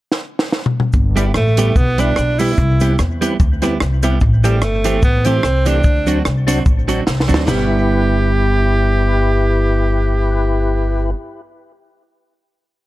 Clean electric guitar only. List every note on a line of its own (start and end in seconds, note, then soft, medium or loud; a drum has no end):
1.16 1.31 G3 medium
1.16 1.31 B3 medium
1.16 1.31 E4 medium
1.16 1.31 G4 medium
1.35 muted clean electric guitar stroke soft
1.58 1.72 G3 medium
1.58 1.72 B3 medium
1.58 1.73 E4 medium
1.58 1.73 G4 loud
1.98 2.13 G3 medium
1.98 2.13 B3 medium
1.98 2.13 E4 medium
1.98 2.14 G4 medium
2.17 muted clean electric guitar stroke soft
2.40 2.54 G3 medium
2.40 2.55 B3 medium
2.40 2.55 E4 medium
2.40 2.55 G4 medium
2.81 2.95 G3 medium
2.81 2.95 B3 medium
2.81 2.96 E4 medium
2.81 2.96 G4 medium
3.21 3.36 G3 medium
3.21 3.36 B3 medium
3.21 3.36 E4 medium
3.21 3.36 G4 medium
3.63 3.77 G3 medium
3.63 3.77 B3 medium
3.63 3.77 E4 medium
3.63 3.77 G4 medium
4.03 4.18 G3 medium
4.03 4.18 B3 medium
4.03 4.18 E4 medium
4.03 4.18 G4 medium
4.44 4.58 E3 medium
4.44 4.59 A3 medium
4.44 4.59 C4 medium
4.44 4.59 G4 medium
4.85 4.99 E3 medium
4.85 5.00 A3 medium
4.85 5.00 C4 medium
4.85 5.00 G4 medium
5.26 5.40 E3 medium
5.26 5.40 A3 medium
5.26 5.41 C4 medium
5.26 5.41 G4 loud
5.66 5.81 E3 medium
5.66 5.81 A3 medium
5.66 5.81 C4 medium
5.66 5.81 G4 medium
6.07 6.21 F#3 medium
6.07 6.22 C4 medium
6.07 6.22 D4 medium
6.07 6.22 F#4 medium
6.25 muted clean electric guitar stroke soft
6.47 6.62 F#3 medium
6.47 6.62 C4 medium
6.47 6.62 D4 medium
6.47 6.62 F#4 medium
6.88 7.03 F#3 medium
6.88 7.03 C4 medium
6.88 7.03 D4 medium
6.88 7.03 F#4 medium
7.28 7.43 F#3 medium
7.28 7.44 C4 medium
7.28 7.44 D4 medium
7.28 7.44 F#4 medium
7.46 11.13 G3 medium
7.46 11.15 B3 medium
7.46 11.17 E4 medium
7.51 11.18 G4 medium